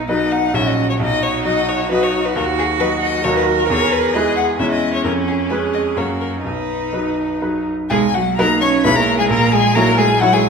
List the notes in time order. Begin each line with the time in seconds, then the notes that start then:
Already playing: B1 D#4
0.08 F#3 B3 D#4 B4 D#5
0.32 F#5
0.54 A#1 F#3 C#4 F#4 C#5 E5
0.67 D#5
0.90 C#5
0.99 B1 D#4 D#5
1.23 C#5
1.45 F#3 F#4 D#5
1.68 C#5
1.91 F#3 D#4 F#4 B4 D#5
2.03 C#5
2.25 B4
2.36 D#2 F#4 A#4
2.59 G#4
2.80 F#3 F#4 B4 D#5
3.02 D#5
3.24 D#2 F#3 F#4 A#4 C#5 D#5
3.37 B4
3.58 A#4
3.69 E2 G#4 C#5
3.92 B4
4.13 G#3 E4 G#4 B4 D#5
4.37 F#5
4.59 E2 G#3 C#4 E4 C#5 E5
4.71 D#5
4.94 C#5
5.04 F2 C#4 A#4
5.27 G#4
5.50 G#3 C#4 G#4 B4
5.74 D#5
5.96 F#2 F#3 A#3 C#4 F#4 A#4 C#5
6.21 A#4
6.44 B1 D#4 B4
6.93 F#3 D#4 B4
7.42 F#3 D#4 B4
7.90 B1 G#3 G#4 G#5
8.14 F#3 F#4 F#5
8.38 F#3 A#3 D#4 A#4 B4 A#5
8.61 C#4 C#5 C#6
8.84 B1 G#3 B3 E4 B4 C#5 B5
8.96 A#3 A#4 A#5
9.19 G#3 G#4 G#5
9.30 A#1 A#3 A#4 A#5
9.52 G#3 G#4 G#5
9.75 F#3 A#3 E4 A#4 C#5 A#5
9.98 G#3 G#4 G#5
10.21 F#3 E4 F#4 C#5 F#5
10.33 G#3 G#4 G#5